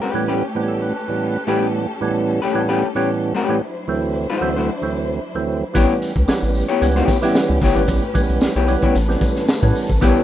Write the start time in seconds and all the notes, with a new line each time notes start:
Already playing: A3 C#4 G4 B4
0.02 A3 C#4 G4 B4
0.14 A2 E3 G3 B3 C#4
0.28 A3 C#4 G4 B4
0.42 A4
0.55 A2 E3 G3 B3 C4
0.63 C#4
0.68 A4
0.82 B4
0.94 B4
1.08 A2 E3 G3 B3 C#4
1.47 A2 E3 G3 A3 B3 C#4 G4 B4
2.01 A2 E3 G3 B3 C#4
2.42 A3 C#4 G4 B4
2.54 A2 E3 G3 B3 C#4
2.69 A3 C#4 G4 B4
2.95 A2 E3 G3 A3 B3 C#4 G4 C#5
3.35 A3 C#4 G4 B4
3.48 A2 E3 G3 B3 C#4
3.61 F#3 D4 E4 C5
3.88 D2 E3 F#3 A3 C4
4.30 A3 E4 F#4 C5
4.41 D2 E3 F#3 A3 C4
4.57 A3 E4 F#4 C5
4.82 D2 E3 F#3 A3 C4
5.34 D2 E3 F#3 A3 C4
5.74 A1 E3 G3 A3 B3 C#4 E4 G4 B4 C#5, kick, closed hi-hat, tambourine
5.89 closed hi-hat
6.02 closed hi-hat, tambourine
6.16 C#2, kick, closed hi-hat
6.28 A1 E3 G3 B3 C#4, snare, tambourine
6.43 A1, closed hi-hat, tambourine
6.54 open hi-hat, tambourine
6.69 B3 E4 G4 C#5, closed hi-hat
6.81 C#2 E3 G3 B3 C#4, closed hi-hat, tambourine
6.96 B3 E4 G4 C#5, snare, closed hi-hat
7.08 kick, snare, closed hi-hat, tambourine
7.22 E3 G3 B3 C#4 E4 G4 E5, snare, closed hi-hat, tambourine
7.35 snare, tambourine
7.49 C#2
7.62 G1 B3 E4 G4 C#5, kick, open hi-hat, tambourine
7.75 G#1 E3 G3 B3 C#4, closed hi-hat
7.88 A1, kick, closed hi-hat, tambourine
8.02 closed hi-hat
8.14 E3 G3 B3 C#4, kick, closed hi-hat, tambourine
8.29 B1, closed hi-hat
8.41 B1, snare, tambourine
8.56 B1 B3 E4 G4 C#5, closed hi-hat
8.67 E3 G3 B3 C#4, closed hi-hat, tambourine
8.82 B3 E4 G4 C#5, kick, closed hi-hat
8.95 A1 A4, closed hi-hat, tambourine
9.08 E3 G3 B3 C4, snare, closed hi-hat
9.16 C#4
9.21 kick, snare, closed hi-hat, tambourine
9.36 snare, closed hi-hat, tambourine
9.48 snare, tambourine
9.62 A2 E3 G3 B3 C#4, kick, closed hi-hat
9.75 open hi-hat, tambourine
9.89 G#1, kick, closed hi-hat, tambourine
10.01 A1 E3 G3 B3 C4 E4 G4 C#5, kick, closed hi-hat, tambourine
10.09 C#4
10.16 closed hi-hat